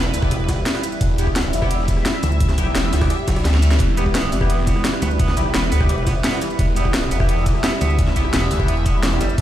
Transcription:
Already playing: detuned saw bass E1, analog synth pad G3 E4 B4
0.14 detuned saw bass D2, open hi-hat, ride, ride bell, shaker
0.22 synth stab B3 E4 G4, kick, cross-stick, ride
0.31 wobble bass E1, closed hi-hat, ride
0.40 ride
0.49 kick, snare, closed hi-hat, ride, ride bell, shaker
0.66 snare, closed hi-hat, ride
0.75 snare, ride
0.83 cross-stick, open hi-hat, ride bell, shaker
0.92 ride, shaker
1.01 detuned saw bass E1, analog synth pad E5, kick, closed hi-hat, ride
1.18 synth stab B3 E4 G4, closed hi-hat, ride, ride bell, shaker
1.27 kick, cross-stick
1.36 snare, closed hi-hat, ride
1.53 detuned saw bass F1, open hi-hat, ride, ride bell, shaker
1.62 synth stab B3 E4 G4, kick, cross-stick, snare
1.71 detuned saw bass E1, closed hi-hat, ride
1.79 snare
1.88 kick, snare, closed hi-hat, ride, ride bell, shaker
1.97 cross-stick, snare
2.06 snare, closed hi-hat, ride
2.14 cross-stick
2.23 wobble bass D2, snare, open hi-hat, ride, ride bell, shaker
2.32 shaker
2.40 kick, closed hi-hat, ride
2.49 snare, ride, shaker
2.58 wobble bass B1, synth stab B3 E4 G4, kick, snare, closed hi-hat, ride, ride bell, shaker
2.67 cross-stick
2.75 detuned saw bass E1, snare, closed hi-hat, ride
2.93 detuned saw bass D2, snare, open hi-hat, ride, ride bell, shaker
3.01 synth stab B3 E4 G4, kick, cross-stick, snare, ride
3.10 snare, closed hi-hat, ride, reverse cymbal
3.19 ride
3.28 wobble bass B1, kick, snare, closed hi-hat, ride, ride bell, shaker
3.36 snare, ride
3.45 wobble bass D2, snare, closed hi-hat, ride
3.54 snare
3.62 open hi-hat, ride, ride bell, shaker
3.71 snare, shaker
3.80 detuned saw bass E1, clean electric guitar E3, analog synth pad B4, kick, closed hi-hat, ride
3.97 synth stab B3 E4 G4, clean electric guitar B3, closed hi-hat, ride, ride bell, shaker
4.06 kick, cross-stick
4.15 clean electric guitar B3, snare, closed hi-hat, ride
4.32 detuned saw bass F1, clean electric guitar E3, open hi-hat, ride, ride bell, shaker
4.41 synth stab B3 E4 G4, kick, cross-stick, snare
4.50 detuned saw bass E1, clean electric guitar B3, closed hi-hat, ride
4.58 snare
4.67 clean electric guitar B3, kick, snare, closed hi-hat, ride, ride bell, shaker
4.76 cross-stick, snare
4.85 clean electric guitar E3, snare, closed hi-hat, ride
4.93 cross-stick
5.02 wobble bass D2, clean electric guitar B3, snare, open hi-hat, ride, ride bell, shaker
5.11 shaker
5.19 clean electric guitar B3, kick, closed hi-hat, ride
5.28 snare, ride
5.37 wobble bass B1, clean electric guitar E3, synth stab B3 E4 G4, kick, snare, closed hi-hat, ride, ride bell, shaker
5.46 cross-stick
5.54 detuned saw bass E1, clean electric guitar B3, snare, closed hi-hat, ride
5.72 detuned saw bass D2, clean electric guitar B3, open hi-hat, ride, ride bell, shaker
5.81 synth stab B3 E4 G4, kick, cross-stick, ride
5.89 wobble bass E1, clean electric guitar E3, closed hi-hat, ride
5.98 ride
6.07 clean electric guitar B3, kick, snare, closed hi-hat, ride, ride bell, shaker
6.24 clean electric guitar B3, snare, closed hi-hat, ride
6.33 snare, ride
6.42 clean electric guitar E3, cross-stick, open hi-hat, ride bell, shaker
6.50 ride, shaker
6.59 detuned saw bass E1, clean electric guitar B3, analog synth pad E5, kick, closed hi-hat, ride
6.76 synth stab B3 E4 G4, clean electric guitar B3, closed hi-hat, ride, ride bell, shaker
6.85 kick, cross-stick
6.94 clean electric guitar E3, snare, closed hi-hat, ride
7.11 detuned saw bass F1, clean electric guitar B3, open hi-hat, ride, ride bell, shaker
7.20 synth stab B3 E4 G4, kick, cross-stick, snare
7.29 detuned saw bass E1, clean electric guitar B3, closed hi-hat, ride
7.38 snare
7.46 clean electric guitar E3, kick, snare, closed hi-hat, ride, ride bell, shaker
7.55 cross-stick, snare
7.64 clean electric guitar B3, snare, closed hi-hat, ride
7.72 cross-stick
7.81 wobble bass D2, clean electric guitar B3, snare, open hi-hat, ride, ride bell, shaker
7.90 shaker
7.99 clean electric guitar E3, kick, closed hi-hat, ride
8.07 snare, ride
8.16 wobble bass B1, clean electric guitar B3, synth stab B3 E4 G4, kick, snare, closed hi-hat, ride, ride bell, shaker
8.25 cross-stick
8.33 detuned saw bass E1, clean electric guitar B3, snare, closed hi-hat, ride
8.51 detuned saw bass D2, clean electric guitar E3, open hi-hat, ride, ride bell, shaker
8.60 synth stab B3 E4 G4, kick, cross-stick, ride
8.68 detuned saw bass E1, clean electric guitar B3, closed hi-hat, ride
8.77 ride
8.86 clean electric guitar B3, kick, closed hi-hat, ride, ride bell, shaker
9.03 clean electric guitar E3, snare, closed hi-hat, ride
9.12 synth stab B3 E4 G4, snare
9.21 wobble bass G1, clean electric guitar G3, cross-stick, open hi-hat, ride, ride bell, shaker
9.29 shaker
9.38 detuned saw bass E1, clean electric guitar E3, analog synth pad B4, kick, closed hi-hat, ride

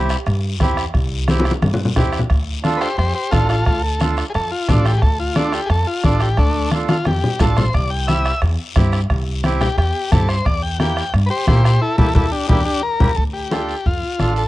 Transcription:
Already playing: upright bass C2, accordion C4 E4 G4, clarinet G4
0.09 bombo rim, short guiro
0.26 upright bass G2, bombo rim, high conga, long guiro
0.60 upright bass E2, accordion C4 E4 G4, bombo low, bombo rim, high conga, short guiro
0.77 bombo rim, short guiro
0.94 upright bass C2, bombo low, bombo rim, high conga, long guiro
1.28 accordion C4 E4 G4, bombo rim, high conga, short guiro
1.40 high conga
1.45 bombo rim, short guiro
1.51 high conga
1.62 upright bass G2, bombo rim, high conga, long guiro
1.74 low conga
1.85 low conga
1.96 upright bass E2, accordion C4 E4 G4, bombo low, bombo rim, low conga, short guiro
2.12 bombo rim, short guiro
2.19 low conga
2.30 upright bass D2, bombo low, bombo rim, high conga, long guiro
2.64 accordion D4 F4 A4, bombo rim, high conga, short guiro
2.77 transistor combo organ G4 B4 C5, short guiro
2.82 bombo rim
2.97 upright bass F2, transistor combo organ G4 C5, bombo rim, high conga, long guiro
3.14 transistor combo organ G4 C5
3.31 upright bass A1, accordion D4 F4 A4, transistor combo organ F4 A4, bombo low, bombo rim, high conga, short guiro
3.49 transistor combo organ F4 A4, bombo rim, short guiro
3.65 upright bass D2, transistor combo organ F4 A4, bombo low, bombo rim, high conga, long guiro
3.84 transistor combo organ A4
4.00 accordion D4 F4 A4, bombo rim, high conga, short guiro
4.17 bombo rim, short guiro
4.30 transistor combo organ G#4
4.34 upright bass F2, transistor combo organ A4, bombo rim, high conga, long guiro
4.51 transistor combo organ F4
4.68 upright bass A1, accordion D4 F4 A4, transistor combo organ D4, bombo low, bombo rim, high conga, low conga, short guiro
4.85 transistor combo organ G4, bombo rim, short guiro
4.98 transistor combo organ G#4
5.02 upright bass D2, transistor combo organ A4, bombo low, bombo rim, high conga, long guiro
5.20 transistor combo organ F4
5.36 accordion D4 F4 A4, transistor combo organ D4, bombo rim, high conga, short guiro
5.52 transistor combo organ G4, bombo rim, short guiro
5.66 upright bass F2, transistor combo organ G#4, bombo rim
5.70 transistor combo organ A4, high conga, long guiro
5.87 transistor combo organ F4
6.03 upright bass A1, accordion D4 F4 A4, transistor combo organ D4, bombo low, bombo rim, high conga, short guiro
6.20 transistor combo organ G4, bombo rim, short guiro
6.37 upright bass D2, transistor combo organ A3 D4, bombo low, bombo rim, high conga, long guiro
6.72 accordion D4 F4 A4, bombo rim, high conga, short guiro
6.88 transistor combo organ F4, bombo rim, high conga, short guiro
7.05 upright bass F2, transistor combo organ G4, bombo rim, high conga, long guiro
7.24 low conga
7.39 upright bass A1, accordion D4 F4 A4, transistor combo organ A4, bombo low, bombo rim, low conga, short guiro
7.57 transistor combo organ C5, bombo rim, low conga, short guiro
7.73 upright bass C2, transistor combo organ D5, bombo low, bombo rim, high conga, long guiro
7.90 transistor combo organ G5
8.07 accordion C4 E4 G4, transistor combo organ E5, bombo rim, high conga, short guiro
8.25 bombo rim, short guiro
8.42 upright bass E2, bombo rim, high conga, long guiro
8.75 upright bass G2, accordion C4 E4 G4, bombo low, bombo rim, high conga, short guiro
8.92 bombo rim, short guiro
9.10 upright bass C2, bombo low, bombo rim, high conga, long guiro
9.43 accordion C4 E4 G4, bombo rim, high conga, short guiro
9.61 transistor combo organ G4, bombo rim, low conga, short guiro
9.78 upright bass E2, transistor combo organ G4, bombo rim, high conga, long guiro
10.12 upright bass G2, accordion C4 E4 G4, transistor combo organ A4, bombo low, bombo rim, high conga, low conga, short guiro
10.29 transistor combo organ C5, bombo rim, short guiro
10.45 upright bass E2, transistor combo organ D5, bombo low, bombo rim, high conga, long guiro
10.62 transistor combo organ G5
10.79 accordion A#3 E4 G4, transistor combo organ G5, bombo rim, high conga, short guiro
10.97 bombo rim, short guiro
11.13 upright bass G2, bombo rim, high conga, long guiro
11.26 transistor combo organ G4 B4
11.31 transistor combo organ C5
11.47 upright bass A#2, accordion A#3 E4 G4, transistor combo organ G4 C5, bombo low, bombo rim, high conga, short guiro
11.64 transistor combo organ G4 C5, bombo rim, short guiro
11.82 transistor combo organ E4 A4
11.97 upright bass E2, accordion A#3 E4 G4, transistor combo organ E4 A4, bombo low, low conga, long guiro
12.15 upright bass E2, accordion A#3 E4 G4, transistor combo organ E4 A4, bombo low, low conga, long guiro
12.32 transistor combo organ D4 G4
12.48 upright bass E2, accordion A#3 E4 G4, transistor combo organ D4 G4, bombo low, low conga, long guiro
12.65 transistor combo organ D4 G4
12.83 transistor combo organ A#4
13.00 upright bass E2, accordion A#3 E4 G4, bombo low, low conga, long guiro
13.16 upright bass D2, transistor combo organ A4, bombo low, high conga, long guiro
13.33 transistor combo organ G4
13.50 accordion D4 F4 A4, bombo rim, high conga, short guiro
13.69 short guiro
13.86 upright bass F2, transistor combo organ F4, bombo low, long guiro
14.03 high conga
14.19 upright bass A1, accordion D4 F4 A4, bombo rim, high conga, short guiro
14.36 transistor combo organ A4, short guiro

